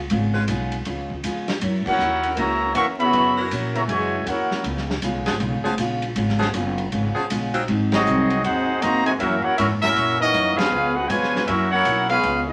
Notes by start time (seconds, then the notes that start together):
0.10 G#1 C#3 G#3 B3 F4, ride
0.34 G#3 C#4 F4 B4
0.48 B1 C#3 G#3 B3 F4, hi-hat pedal, ride
0.72 ride
0.85 C#2 C#3 G#3 B3 F4, ride
1.10 kick
1.24 F2 C#3 G#3 B3 F4, hi-hat pedal, ride
1.48 snare, ride
1.61 F#2 F#3 C#4 E4 A#4, ride
1.85 A#3 C#4 E4 F#4 A#4 C#5 F#5, muted upright bass stroke, kick, crash
1.99 D#2 F#3 C#4 E4 A#4, hi-hat pedal
2.23 ride
2.36 C#2 C#3 E3 F#3 A#3 C#4 E4 F#4 A#4 C#5 E5 A#5, ride
2.74 E2 E3 F#3 A#3 C#4 E4 A#4 E5 F#5 C#6, hi-hat pedal, ride
2.98 C#3 E3 B3 F#4 C#5 E5 B5, ride
3.13 F#2 F#3 C#4 E4 A#4, ride
3.38 F#3 C#4 E4 A#4
3.51 A#2 F#3 C#4 E4 A#4, hi-hat pedal, ride
3.74 C#3 E3 A#3 F#4 C#5 E5 A#5, ride
3.88 F#2 C#3 E3 F#3 G#3 C#4 E4 F#4 A#4 C#5 E5 G#5, ride
4.26 E2 F#3 A#3 C#4 E4 F#4 A#4 C#5 F#5, hi-hat pedal, ride
4.51 snare
4.64 C#2 C#3 G#3 B3 F4, ride
4.77 snare
4.90 snare
5.02 C2 C#3 G#3 B3 F4, hi-hat pedal, ride
5.15 B1
5.26 G#1 F3 B3 C#4 G#4, snare, ride
5.40 B1 C#3 G#3 B3 F4, ride
5.53 G#1
5.64 F1 F3 B3 C#4 G#4
5.78 A#1 C#3 G#3 B3 F4, hi-hat pedal, ride
6.02 ride
6.15 G#1 C#3 G#3 B3 F4, ride
6.29 snare
6.39 F3 B3 C#4 G#4, snare
6.53 F#1 C#3 G#3 B3 F4, hi-hat pedal, ride
6.78 ride
6.92 G#1 C#3 G#3 B3 F4, ride
7.15 F3 B3 C#4 G#4, muted upright bass stroke
7.30 A#1 C#3 G#3 B3 F4, hi-hat pedal, ride
7.54 F#3 C4 D#4 F4, ride
7.68 G#1 G#2 F#3 C4 D#4, ride
7.92 F#3 C4 D#4 F#4 G#4 D#5, snare, ride
8.06 C2 G#2 F#3 C4 D#4, hi-hat pedal
8.30 ride
8.44 D#2 G#2 F#3 C4 D#4 F#4 G#4 C5 F#5, ride
8.81 F2 G#2 F#3 A#3 C4 D#4 F#4 C5 D#5 A#5, hi-hat pedal, ride
9.06 C3 D#3 G#3 F#4 C5 D#5 G#5, ride
9.19 F#2 E3 A#3 C#4 E4 F#4 A#4 E5, ride
9.43 A#3 C#4 E4 F#4 A#4 C#5 F#5
9.57 F#2 G#2 E3 A#3 C#4 E4 F#4 A#4 E5, hi-hat pedal, ride
9.81 A#3 C#4 E4 F#4 A#4 E5, snare, ride
9.96 F#2 A#2 E3 A#3 C#4, ride
10.19 E3 A#3 C#4 D#4 F#4 A#4 D#5
10.33 F#2 E3 A#3 C#4, hi-hat pedal, ride
10.57 F3 G#3 B3 C#4 F4 G#4 B4 F5, muted upright bass stroke, snare, ride
10.71 C#2 C#3 G#3 B3 F4
10.95 D#4 F#4 G#4 B4 F#5
11.08 F2 B2 C#3 F3 G#3 B3 F4 B4 C#5 G#5, hi-hat pedal, ride
11.23 snare
11.36 snare
11.46 F#2 E3 F#3 A#3 C#4 E4 F#4 A#4 E5, ride
11.71 A#3 C#4 E4 F#4 A#4 C#5 F#5
11.85 B1 F#3 C#4 E4 A#4, hi-hat pedal, ride
12.09 G#3 B3 C#4 F4 G#4 B4 F5, ride
12.23 C#2 C#3 G#3 B3 F4, ride
12.47 B3 D#4 D#5